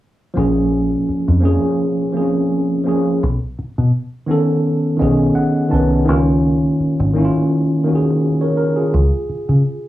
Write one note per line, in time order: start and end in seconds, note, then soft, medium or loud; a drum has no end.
0.34 0.94 A#1 medium
0.34 1.18 F3 medium
0.34 1.19 A#3 medium
0.34 1.20 C#4 medium
0.38 1.20 G#4 medium
1.09 muted fingered electric bass stroke soft
1.28 1.57 F2 medium
1.40 1.98 F3 medium
1.40 1.99 A#3 medium
1.40 1.99 C#4 medium
1.45 2.00 G#4 medium
2.13 2.70 F3 medium
2.13 2.70 A#3 medium
2.13 2.22 C4 soft
2.17 2.72 G#4 medium
2.22 2.75 C#4 medium
2.84 3.20 F3 medium
2.84 3.21 A#3 medium
2.84 3.22 C#4 medium
2.88 3.23 G#4 medium
3.23 3.38 B1 medium
3.59 muted fingered electric bass stroke soft
3.78 3.91 B2 medium
4.27 4.84 D#3 medium
4.27 4.85 B3 medium
4.27 4.85 C#4 medium
4.31 4.86 A4 medium
4.97 5.55 D#3 medium
4.97 5.56 B3 medium
4.97 5.56 C#4 medium
4.97 5.33 D#5 medium
5.01 5.30 B1 medium
5.01 5.57 G#4 medium
5.35 5.69 F#5 medium
5.69 6.09 C2 medium
5.69 5.98 D#3 medium
5.69 5.99 B3 medium
5.69 6.00 C#4 medium
5.69 6.05 A5 medium
5.74 6.01 B4 medium
6.05 6.66 C#2 medium
6.05 6.89 D#3 medium
6.05 6.90 A#3 medium
6.05 6.91 C#4 medium
6.10 6.92 F4 medium
6.80 muted fingered electric bass stroke soft
7.00 7.28 G#1 medium
7.13 7.70 D#3 medium
7.13 7.71 A#3 medium
7.13 7.72 C#4 medium
7.18 7.23 E4 medium
7.24 7.76 F4 medium
7.84 8.41 D#3 medium
7.84 8.42 A#3 medium
7.84 8.43 C#4 medium
7.89 7.94 F#4 medium
7.95 8.26 G#4 medium
8.41 8.56 A#4 soft
8.41 8.56 C#5 medium
8.57 8.76 A#4 medium
8.76 9.11 F4 medium
8.76 9.11 G#4 medium
8.94 9.09 C#2 medium
9.29 muted fingered electric bass stroke soft
9.49 9.62 C#3 medium